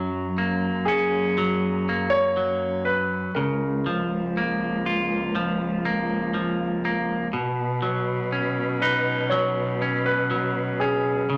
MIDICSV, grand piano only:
0, 0, Header, 1, 2, 480
1, 0, Start_track
1, 0, Tempo, 993377
1, 1622, Time_signature, 4, 2, 24, 8
1, 5496, End_track
2, 0, Start_track
2, 0, Title_t, "Grand piano"
2, 0, Program_c, 0, 0
2, 412, Note_on_c, 0, 68, 70
2, 1015, Note_on_c, 0, 73, 92
2, 1036, Note_off_c, 0, 68, 0
2, 1359, Note_off_c, 0, 73, 0
2, 1377, Note_on_c, 0, 71, 69
2, 1618, Note_on_c, 0, 70, 58
2, 1627, Note_off_c, 0, 71, 0
2, 2321, Note_off_c, 0, 70, 0
2, 4260, Note_on_c, 0, 71, 70
2, 4492, Note_on_c, 0, 73, 69
2, 4506, Note_off_c, 0, 71, 0
2, 4859, Note_on_c, 0, 71, 75
2, 4865, Note_off_c, 0, 73, 0
2, 5217, Note_on_c, 0, 68, 64
2, 5229, Note_off_c, 0, 71, 0
2, 5496, Note_off_c, 0, 68, 0
2, 5496, End_track
0, 0, End_of_file